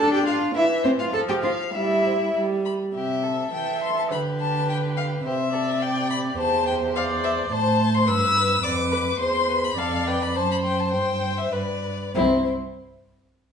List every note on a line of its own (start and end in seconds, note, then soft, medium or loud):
0.00 0.46 D4 medium
0.00 0.13 A4 medium
0.00 0.12 A5 medium
0.13 0.26 G4 medium
0.13 0.26 G5 medium
0.26 0.55 F4 medium
0.26 0.34 F5 medium
0.26 0.35 F5 medium
0.55 1.04 E3 medium
0.55 0.64 E4 medium
0.55 0.83 E5 medium
0.84 0.90 C4 medium
0.84 0.90 C5 medium
0.84 0.93 C5 medium
0.99 1.13 F4 medium
0.99 1.05 F5 medium
1.13 1.64 F3 medium
1.13 1.20 A4 medium
1.13 1.19 A5 medium
1.29 1.35 G4 medium
1.29 1.35 G5 medium
1.43 1.52 F4 medium
1.43 1.51 C5 soft
1.43 1.75 F5 medium
1.74 2.25 G3 medium
1.74 2.34 E4 medium
1.74 2.35 E5 medium
2.05 2.13 C5 soft
2.34 2.85 G3 medium
2.65 2.73 B5 soft
2.95 3.50 C3 soft
2.95 3.25 G4 soft
2.95 3.50 E5 medium
3.24 4.13 A4 soft
3.53 4.13 E3 soft
3.53 4.12 E5 medium
3.53 3.82 G5 medium
3.83 3.97 C6 medium
3.98 4.04 A5 soft
4.11 5.24 D3 soft
4.11 5.25 G4 soft
4.11 5.26 B4 soft
4.11 4.20 B5 medium
4.40 4.69 A5 medium
4.69 4.77 G5 medium
4.97 5.05 F5 medium
5.25 6.36 C3 medium
5.25 5.34 G4 medium
5.25 5.53 C5 soft
5.25 5.83 E5 medium
5.53 5.61 A4 soft
5.53 6.37 D5 medium
5.82 6.97 G4 soft
5.82 6.10 G5 medium
6.11 6.19 B5 medium
6.39 7.50 E2 medium
6.39 6.98 C5 medium
6.39 6.66 A5 medium
6.67 6.75 G5 medium
6.96 7.51 C5 medium
6.96 7.53 D5 medium
6.96 7.04 F5 medium
7.24 7.32 E5 medium
7.52 8.09 A2 medium
7.52 8.09 C5 medium
7.52 8.08 C5 medium
7.52 7.96 A5 medium
7.95 8.09 C6 medium
8.07 8.63 G2 medium
8.07 8.63 B4 medium
8.07 8.65 E6 loud
8.63 9.19 F2 medium
8.63 9.21 B4 medium
8.63 8.72 D5 medium
8.63 9.20 D6 medium
8.92 9.00 B4 medium
9.20 9.77 E2 soft
9.20 9.48 C5 medium
9.20 9.76 C5 medium
9.20 9.66 C6 medium
9.49 9.57 B4 soft
9.64 9.80 B5 medium
9.77 10.38 F2 medium
9.77 10.09 A4 medium
9.77 10.37 D5 medium
9.77 10.09 F5 medium
10.07 10.35 B4 soft
10.07 10.24 G5 medium
10.23 10.38 B5 medium
10.35 10.95 F#2 medium
10.35 11.52 C5 medium
10.35 10.92 C5 soft
10.35 10.50 A5 medium
10.51 10.57 B5 medium
10.64 10.81 G5 medium
10.79 10.92 A5 medium
10.92 11.52 G2 medium
10.92 11.54 C5 soft
10.92 11.40 G5 medium
11.38 11.54 E5 medium
11.52 11.93 G2 soft
11.52 11.60 B4 soft
11.52 11.94 B4 soft
11.52 12.14 D5 medium
12.14 12.49 C2 medium
12.14 12.48 C4 medium
12.14 12.48 E4 medium
12.14 12.48 C5 medium